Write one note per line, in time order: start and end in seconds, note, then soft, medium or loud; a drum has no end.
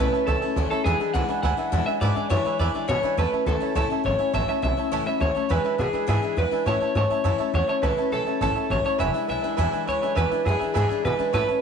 0.00 0.12 B1 loud
0.00 0.13 A2 medium
0.00 0.13 E3 medium
0.00 0.14 A3 medium
0.00 0.14 C#4 medium
0.00 0.12 E4 medium
0.00 0.26 B4 medium
0.12 0.28 C#4 medium
0.12 0.28 E4 medium
0.12 0.21 C#5 medium
0.12 0.22 E5 medium
0.12 0.22 A5 medium
0.12 muted upright bass stroke medium
0.16 0.27 A3 soft
0.27 0.41 C#2 medium
0.27 0.42 E3 medium
0.27 0.43 A3 medium
0.27 0.42 C#4 medium
0.27 0.41 E4 medium
0.27 0.69 A4 medium
0.27 0.36 C#5 loud
0.27 0.36 E5 loud
0.27 0.37 A5 loud
0.41 0.56 A3 soft
0.41 0.57 C#4 medium
0.41 0.57 E4 medium
0.41 0.50 C#5 medium
0.41 0.50 E5 medium
0.41 0.51 A5 medium
0.56 0.71 D2 loud
0.56 0.71 A2 medium
0.56 0.71 E3 medium
0.56 0.72 A3 medium
0.56 0.71 C#4 medium
0.56 0.70 E4 medium
0.56 0.65 C#5 medium
0.56 0.65 E5 medium
0.56 0.65 A5 medium
0.70 0.86 A3 soft
0.70 0.86 C#4 soft
0.70 0.86 E4 medium
0.70 0.84 A4 medium
0.70 0.79 C#5 medium
0.70 0.80 E5 medium
0.70 0.80 A5 medium
0.70 muted upright bass stroke medium
0.84 0.99 E2 medium
0.84 1.00 E2 medium
0.84 1.00 B2 medium
0.84 1.00 E3 medium
0.84 1.00 G#3 medium
0.84 0.99 D4 medium
0.84 0.99 E4 medium
0.84 1.12 G#4 medium
0.84 0.94 B4 medium
0.84 0.94 E5 medium
0.84 0.95 G#5 loud
1.00 1.14 E3 soft
1.00 1.14 G#3 medium
1.00 1.14 D4 medium
1.00 1.14 E4 medium
1.00 1.09 B4 medium
1.00 1.09 E5 medium
1.00 1.09 G#5 medium
1.14 1.28 C#2 loud
1.14 1.29 E2 medium
1.14 1.29 B2 medium
1.14 1.29 E3 medium
1.14 1.29 G#3 medium
1.14 1.28 D4 medium
1.14 1.27 E4 medium
1.14 1.23 B4 medium
1.14 1.24 E5 medium
1.14 1.42 F#5 loud
1.14 1.24 G#5 medium
1.28 1.42 E3 soft
1.28 1.43 G#3 medium
1.28 1.43 D4 medium
1.28 1.43 E4 medium
1.28 1.38 B4 medium
1.28 1.38 E5 medium
1.28 1.39 G#5 medium
1.43 1.58 D2 medium
1.43 1.58 E3 medium
1.43 1.57 G#3 medium
1.43 1.57 D4 medium
1.43 1.56 E4 medium
1.43 1.52 B4 loud
1.43 1.53 E5 loud
1.43 1.86 F#5 medium
1.43 1.53 G#5 loud
1.57 1.71 E3 soft
1.57 1.72 G#3 medium
1.57 1.72 D4 medium
1.57 1.72 E4 medium
1.57 1.67 B4 medium
1.57 1.67 E5 medium
1.57 1.67 G#5 medium
1.72 1.87 E2 medium
1.72 1.86 E2 loud
1.72 1.87 B2 medium
1.72 1.87 E3 medium
1.72 1.87 G#3 medium
1.72 1.86 D4 medium
1.72 1.85 E4 medium
1.72 1.81 B4 medium
1.72 1.82 E5 medium
1.72 1.82 G#5 medium
1.86 2.01 E3 soft
1.86 2.01 G#3 soft
1.86 2.01 D4 soft
1.86 2.01 E4 medium
1.86 1.96 B4 medium
1.86 1.91 E5 medium
1.86 1.96 E5 medium
1.86 1.96 G#5 medium
1.86 muted upright bass stroke medium
2.01 2.16 E2 medium
2.01 2.15 G#2 medium
2.01 2.16 B2 medium
2.01 2.16 E3 medium
2.01 2.16 G#3 medium
2.01 2.15 D4 medium
2.01 2.14 E4 medium
2.01 2.11 B4 loud
2.01 2.30 D5 loud
2.01 2.11 E5 medium
2.01 2.11 G#5 loud
2.15 2.29 E3 soft
2.15 2.29 G#3 soft
2.15 2.30 D4 medium
2.15 2.30 E4 soft
2.15 2.25 B4 medium
2.15 2.25 E5 medium
2.15 2.25 G#5 medium
2.15 muted upright bass stroke medium
2.30 2.45 E2 medium
2.30 2.45 F#2 loud
2.30 2.45 B2 medium
2.30 2.45 E3 medium
2.30 2.45 G#3 medium
2.30 2.44 D4 medium
2.30 2.43 E4 medium
2.30 2.39 B4 medium
2.30 2.58 C#5 medium
2.30 2.40 E5 medium
2.30 2.40 G#5 medium
2.44 2.58 E3 soft
2.44 2.59 G#3 medium
2.44 2.60 D4 medium
2.44 2.59 E4 medium
2.44 2.54 B4 medium
2.44 2.55 E5 medium
2.44 2.55 G#5 medium
2.44 muted upright bass stroke medium
2.59 2.74 E2 medium
2.59 2.74 E3 medium
2.59 2.74 G#3 medium
2.59 2.74 D4 medium
2.59 2.73 E4 medium
2.59 2.69 B4 loud
2.59 3.00 D5 medium
2.59 2.69 E5 medium
2.59 2.69 G#5 loud
2.74 2.88 E3 soft
2.74 2.88 G#3 medium
2.74 2.88 D4 medium
2.74 2.89 E4 medium
2.74 2.83 B4 medium
2.74 2.83 E5 medium
2.74 2.84 G#5 medium
2.74 muted upright bass stroke medium
2.88 3.03 E2 medium
2.88 3.03 B2 medium
2.88 3.03 B2 loud
2.88 3.03 E3 medium
2.88 3.04 G#3 medium
2.88 3.03 D4 loud
2.88 3.02 E4 medium
2.88 2.98 B4 medium
2.88 3.16 C#5 loud
2.88 2.98 E5 medium
2.88 2.99 G#5 medium
3.03 3.17 E3 medium
3.03 3.18 G#3 medium
3.03 3.18 D4 medium
3.03 3.18 E4 medium
3.03 3.12 B4 medium
3.03 3.12 E5 medium
3.03 3.13 G#5 loud
3.03 muted upright bass stroke medium
3.17 3.31 E2 medium
3.17 3.32 A2 medium
3.17 3.32 E3 medium
3.17 3.33 A3 medium
3.17 3.32 C#4 medium
3.17 3.31 E4 medium
3.17 3.47 B4 loud
3.17 3.27 C#5 medium
3.17 3.27 E5 medium
3.17 3.27 A5 loud
3.32 3.46 A3 soft
3.32 3.47 C#4 soft
3.32 3.47 E4 soft
3.32 3.41 C#5 medium
3.32 3.41 E5 medium
3.32 3.42 A5 medium
3.46 3.60 D2 loud
3.46 3.61 E3 medium
3.46 3.61 A3 medium
3.46 3.60 C#4 medium
3.46 3.59 E4 medium
3.46 3.75 A4 medium
3.46 3.56 C#5 medium
3.46 3.56 E5 medium
3.46 3.56 A5 medium
3.60 3.75 A3 soft
3.60 3.76 C#4 medium
3.60 3.75 E4 medium
3.60 3.70 C#5 medium
3.60 3.70 E5 medium
3.60 3.71 A5 medium
3.75 3.89 C#2 medium
3.75 3.90 A2 medium
3.75 3.90 E3 medium
3.75 3.91 A3 medium
3.75 3.90 C#4 medium
3.75 3.89 E4 medium
3.75 4.03 A4 medium
3.75 3.85 C#5 loud
3.75 3.85 E5 medium
3.75 3.85 A5 loud
3.90 4.04 A3 soft
3.90 4.04 C#4 medium
3.90 4.05 E4 medium
3.90 4.00 C#5 medium
3.90 4.00 E5 medium
3.90 4.00 A5 medium
4.04 4.18 G#1 medium
4.04 4.19 E3 medium
4.04 4.19 A3 medium
4.04 4.19 C#4 medium
4.04 4.17 E4 medium
4.04 4.14 C#5 medium
4.04 4.32 C#5 loud
4.04 4.14 E5 medium
4.04 4.14 A5 medium
4.18 4.33 A3 soft
4.18 4.33 C#4 soft
4.18 4.34 E4 medium
4.18 4.28 C#5 medium
4.18 4.28 E5 medium
4.18 4.28 G#5 medium
4.18 muted upright bass stroke medium
4.33 4.48 A1 medium
4.33 4.48 A2 medium
4.33 4.48 E3 medium
4.33 4.49 A3 medium
4.33 4.48 C#4 medium
4.33 4.47 E4 medium
4.33 4.42 C#5 loud
4.33 4.43 E5 medium
4.33 4.48 E5 loud
4.33 4.43 A5 loud
4.48 4.62 A3 soft
4.48 4.63 C#4 medium
4.48 4.63 E4 medium
4.48 4.57 C#5 medium
4.48 4.57 E5 medium
4.48 4.62 E5 loud
4.48 4.58 A5 medium
4.48 muted upright bass stroke medium
4.62 4.77 B1 loud
4.62 4.77 E3 medium
4.62 4.78 A3 medium
4.62 4.77 C#4 medium
4.62 4.76 E4 medium
4.62 4.72 C#5 medium
4.62 5.06 E5 loud
4.62 4.72 E5 medium
4.62 4.73 A5 medium
4.77 4.91 A3 soft
4.77 4.92 C#4 medium
4.77 4.92 E4 soft
4.77 4.86 C#5 medium
4.77 4.87 E5 medium
4.77 4.87 A5 medium
4.77 muted upright bass stroke medium
4.92 5.05 C#2 medium
4.92 5.06 A2 medium
4.92 5.06 E3 medium
4.92 5.07 A3 medium
4.92 5.06 C#4 medium
4.92 5.05 E4 medium
4.92 5.01 C#5 loud
4.92 5.01 E5 loud
4.92 5.01 A5 loud
5.06 5.20 A3 medium
5.06 5.21 C#4 medium
5.06 5.21 E4 medium
5.06 5.16 C#5 medium
5.06 5.21 E5 loud
5.06 5.16 E5 medium
5.06 5.16 B5 medium
5.06 muted upright bass stroke soft
5.20 5.35 D2 medium
5.20 5.35 E3 medium
5.20 5.36 A3 medium
5.20 5.35 C#4 medium
5.20 5.33 E4 medium
5.20 5.29 C#5 medium
5.20 5.51 C#5 loud
5.20 5.30 E5 medium
5.20 5.30 A5 medium
5.35 5.49 A3 soft
5.35 5.50 C#4 medium
5.35 5.49 E4 medium
5.35 5.44 C#5 medium
5.35 5.45 E5 medium
5.35 5.45 A5 medium
5.35 muted upright bass stroke medium
5.49 5.64 E2 medium
5.49 5.64 B2 medium
5.49 5.64 E3 medium
5.49 5.64 G#3 medium
5.49 5.64 D4 medium
5.49 5.63 E4 medium
5.49 5.59 B4 loud
5.49 5.78 B4 loud
5.49 5.59 E5 loud
5.49 5.60 G#5 loud
5.64 5.77 E3 soft
5.64 5.78 G#3 soft
5.64 5.79 D4 medium
5.64 5.79 E4 medium
5.64 5.73 B4 medium
5.64 5.74 E5 medium
5.64 5.74 G#5 medium
5.78 5.93 B2 loud
5.78 5.93 E3 medium
5.78 5.94 G#3 medium
5.78 5.93 D4 medium
5.78 5.92 E4 medium
5.78 6.08 G#4 loud
5.78 5.88 B4 medium
5.78 5.88 E5 medium
5.78 5.89 G#5 medium
5.93 6.06 E3 soft
5.93 6.07 G#3 soft
5.93 6.07 D4 medium
5.93 6.08 E4 medium
5.93 6.02 B4 medium
5.93 6.03 E5 medium
5.93 6.03 G#5 medium
5.93 muted upright bass stroke medium
6.07 6.22 E2 medium
6.07 6.22 G#2 medium
6.07 6.22 B2 medium
6.07 6.23 E3 loud
6.07 6.23 G#3 medium
6.07 6.22 D4 medium
6.07 6.21 E4 loud
6.07 6.36 G#4 medium
6.07 6.17 B4 loud
6.07 6.17 E5 medium
6.07 6.18 G#5 loud
6.22 6.35 E3 soft
6.22 6.36 G#3 medium
6.22 6.37 D4 medium
6.22 6.37 E4 medium
6.22 6.32 B4 medium
6.22 6.32 E5 medium
6.22 6.33 G#5 medium
6.37 6.51 E2 loud
6.37 6.52 E3 medium
6.37 6.52 G#3 medium
6.37 6.51 D4 medium
6.37 6.50 E4 medium
6.37 6.46 B4 medium
6.37 6.65 B4 loud
6.37 6.47 E5 medium
6.37 6.47 F#5 medium
6.51 6.65 E3 soft
6.51 6.67 G#3 soft
6.51 6.67 D4 medium
6.51 6.66 E4 medium
6.51 6.61 B4 medium
6.51 6.61 E5 medium
6.51 6.62 G#5 medium
6.51 muted upright bass stroke medium
6.66 6.81 A2 medium
6.66 6.80 A2 medium
6.66 6.81 E3 medium
6.66 6.81 A3 medium
6.66 6.80 C#4 medium
6.66 6.79 E4 medium
6.66 6.75 C#5 loud
6.66 6.96 C#5 loud
6.66 6.75 E5 medium
6.66 6.76 A5 loud
6.80 6.95 A3 soft
6.80 6.96 C#4 soft
6.80 6.95 E4 medium
6.80 6.90 C#5 medium
6.80 6.90 E5 medium
6.80 6.90 A5 medium
6.80 muted upright bass stroke medium
6.95 7.09 G#2 loud
6.95 7.10 E3 medium
6.95 7.10 A3 medium
6.95 7.10 C#4 medium
6.95 7.09 E4 medium
6.95 7.04 C#5 medium
6.95 7.51 C#5 loud
6.95 7.05 E5 medium
6.95 7.05 A5 medium
7.10 7.24 A3 soft
7.10 7.24 C#4 soft
7.10 7.25 E4 medium
7.10 7.19 C#5 medium
7.10 7.19 E5 medium
7.10 7.19 A5 medium
7.10 muted upright bass stroke medium
7.24 7.39 F#2 medium
7.24 7.39 A2 medium
7.24 7.39 E3 medium
7.24 7.40 A3 medium
7.24 7.39 C#4 medium
7.24 7.37 E4 medium
7.24 7.33 C#5 loud
7.24 7.33 E5 medium
7.24 7.34 A5 loud
7.38 7.53 A3 medium
7.38 7.54 C#4 medium
7.38 7.53 E4 medium
7.38 7.48 C#5 medium
7.38 7.48 E5 medium
7.38 7.49 A5 medium
7.38 muted upright bass stroke medium
7.54 7.68 E2 medium
7.54 7.68 E3 medium
7.54 7.69 A3 medium
7.54 7.67 C#4 medium
7.54 7.66 E4 medium
7.54 7.63 C#5 medium
7.54 7.68 C#5 loud
7.54 7.63 E5 medium
7.54 7.63 F#5 medium
7.67 7.82 A3 medium
7.67 7.83 C#4 soft
7.67 7.83 E4 medium
7.67 7.77 C#5 medium
7.67 7.84 C#5 medium
7.67 7.77 E5 medium
7.67 7.78 A5 medium
7.67 muted upright bass stroke medium
7.82 7.97 C#2 medium
7.82 7.98 A2 medium
7.82 7.98 E3 medium
7.82 7.98 A3 medium
7.82 7.97 C#4 medium
7.82 7.96 E4 medium
7.82 8.12 B4 medium
7.82 7.91 C#5 medium
7.82 7.92 E5 medium
7.82 7.92 A5 loud
7.97 8.12 A3 soft
7.97 8.12 C#4 medium
7.97 8.12 E4 medium
7.97 8.06 C#5 medium
7.97 8.07 E5 medium
7.97 8.07 A5 medium
8.12 8.26 B1 loud
8.12 8.27 E3 medium
8.12 8.27 A3 medium
8.12 8.26 C#4 medium
8.12 8.25 E4 medium
8.12 8.41 A4 medium
8.12 8.21 C#5 medium
8.12 8.21 E5 medium
8.12 8.22 A5 medium
8.26 8.41 A3 soft
8.26 8.41 C#4 medium
8.26 8.41 E4 medium
8.26 8.35 C#5 medium
8.26 8.36 E5 medium
8.26 8.36 A5 medium
8.26 muted upright bass stroke soft
8.41 8.55 A1 medium
8.41 8.56 A2 medium
8.41 8.56 E3 medium
8.41 8.56 A3 medium
8.41 8.55 C#4 loud
8.41 8.54 E4 medium
8.41 8.69 A4 medium
8.41 8.50 C#5 loud
8.41 8.50 E5 loud
8.41 8.51 A5 loud
8.55 8.70 A3 soft
8.55 8.71 C#4 medium
8.55 8.70 E4 medium
8.55 8.64 C#5 medium
8.55 8.64 E5 medium
8.55 8.65 A5 medium
8.55 muted upright bass stroke medium
8.69 8.84 A1 loud
8.69 8.85 E3 medium
8.69 8.86 A3 medium
8.69 8.85 C#4 medium
8.69 8.83 E4 medium
8.69 8.79 C#5 medium
8.69 8.85 C#5 loud
8.69 8.79 E5 medium
8.69 8.80 A5 medium
8.84 9.00 A3 soft
8.84 9.00 C#4 soft
8.84 9.00 E4 medium
8.84 8.93 C#5 medium
8.84 9.00 C#5 medium
8.84 8.94 E5 medium
8.84 8.94 A5 medium
8.84 muted upright bass stroke medium
8.98 9.13 E1 medium
8.98 9.14 E2 medium
8.98 9.14 B2 medium
8.98 9.15 E3 medium
8.98 9.15 G#3 medium
8.98 9.14 D4 medium
8.98 9.13 E4 medium
8.98 9.08 B4 loud
8.98 9.08 E5 medium
8.98 9.29 E5 loud
8.98 9.09 G#5 loud
9.13 9.28 E3 soft
9.13 9.28 G#3 medium
9.13 9.29 D4 soft
9.13 9.29 E4 medium
9.13 9.22 B4 medium
9.13 9.23 E5 medium
9.13 9.23 G#5 medium
9.13 muted upright bass stroke medium
9.28 9.42 B1 loud
9.28 9.44 E3 medium
9.28 9.44 G#3 medium
9.28 9.43 D4 medium
9.28 9.43 E4 medium
9.28 9.37 B4 medium
9.28 9.38 E5 medium
9.28 9.84 E5 loud
9.28 9.38 G#5 medium
9.42 9.57 E3 soft
9.42 9.58 G#3 soft
9.42 9.58 D4 medium
9.42 9.58 E4 medium
9.42 9.52 B4 medium
9.42 9.52 E5 medium
9.42 9.52 G#5 medium
9.42 muted upright bass stroke soft
9.57 9.73 E2 medium
9.57 9.72 E2 medium
9.57 9.73 B2 medium
9.57 9.73 E3 medium
9.57 9.73 G#3 medium
9.57 9.73 D4 medium
9.57 9.72 E4 medium
9.57 9.66 B4 loud
9.57 9.67 E5 medium
9.57 9.67 G#5 loud
9.71 9.87 G#3 medium
9.71 9.88 D4 medium
9.71 9.88 E4 medium
9.71 9.81 B4 medium
9.71 9.81 E5 medium
9.71 9.81 G#5 medium
9.76 9.86 E3 medium
9.86 10.01 D2 loud
9.86 10.02 E3 medium
9.86 10.03 G#3 medium
9.86 10.02 D4 medium
9.86 9.95 B4 medium
9.86 10.15 C#5 loud
9.86 9.96 E5 medium
9.86 9.96 G#5 medium
9.90 10.01 E4 medium
10.02 10.16 E3 soft
10.02 10.16 G#3 medium
10.02 10.17 D4 medium
10.02 10.17 E4 medium
10.02 10.11 B4 medium
10.02 10.11 E5 medium
10.02 10.11 G#5 medium
10.02 muted upright bass stroke soft
10.15 10.30 E2 medium
10.15 10.31 E2 medium
10.15 10.32 B2 medium
10.15 10.32 E3 medium
10.15 10.32 G#3 medium
10.15 10.31 D4 medium
10.15 10.30 E4 medium
10.15 10.25 B4 loud
10.15 10.46 B4 loud
10.15 10.25 E5 medium
10.15 10.25 G#5 loud
10.30 10.46 G#3 soft
10.30 10.46 D4 soft
10.30 10.46 E4 medium
10.30 10.39 B4 medium
10.30 10.40 E5 medium
10.30 10.40 G#5 medium
10.34 10.45 E3 soft
10.44 10.60 F#2 loud
10.44 10.61 E3 medium
10.44 10.61 G#3 medium
10.44 10.61 D4 medium
10.44 10.73 G#4 medium
10.44 10.54 B4 medium
10.44 10.54 E5 medium
10.44 10.54 G#5 medium
10.49 10.60 E4 medium
10.59 10.76 D4 medium
10.59 10.75 E4 medium
10.59 10.68 B4 medium
10.59 10.69 E5 medium
10.59 10.69 G#5 medium
10.59 muted upright bass stroke medium
10.63 10.75 E3 soft
10.63 10.75 G#3 soft
10.74 10.90 E2 medium
10.74 10.89 G#2 medium
10.74 10.90 B2 medium
10.74 10.90 E3 medium
10.74 10.90 G#3 medium
10.74 10.90 D4 medium
10.74 10.89 E4 medium
10.74 11.03 G#4 medium
10.74 10.83 B4 loud
10.74 10.84 E5 loud
10.74 10.84 G#5 loud
10.88 11.05 D4 medium
10.88 11.05 E4 medium
10.88 10.98 B4 medium
10.88 10.98 E5 medium
10.88 10.98 G#5 medium
10.88 muted upright bass stroke medium
10.92 11.04 E3 soft
10.92 11.04 G#3 medium
11.03 11.19 B2 medium
11.03 11.19 E3 medium
11.03 11.19 G#3 medium
11.03 11.18 D4 medium
11.03 11.17 E4 medium
11.03 11.13 B4 medium
11.03 11.32 B4 medium
11.03 11.13 E5 medium
11.03 11.13 G#5 medium
11.17 11.32 E3 soft
11.17 11.34 G#3 soft
11.17 11.34 D4 medium
11.17 11.33 E4 medium
11.17 11.27 B4 medium
11.17 11.27 E5 medium
11.17 11.28 G#5 medium
11.17 muted upright bass stroke medium
11.33 11.48 A2 medium
11.33 11.48 E3 medium
11.33 11.49 A3 medium
11.33 11.49 C#4 medium
11.33 11.47 E4 medium
11.33 11.61 B4 loud
11.33 11.42 C#5 loud
11.33 11.42 E5 medium
11.33 11.43 A5 loud
11.47 11.62 C#4 soft
11.47 11.62 E4 medium
11.47 11.56 C#5 medium
11.47 11.57 E5 medium
11.47 11.57 A5 medium
11.47 muted upright bass stroke medium
11.51 11.62 A3 soft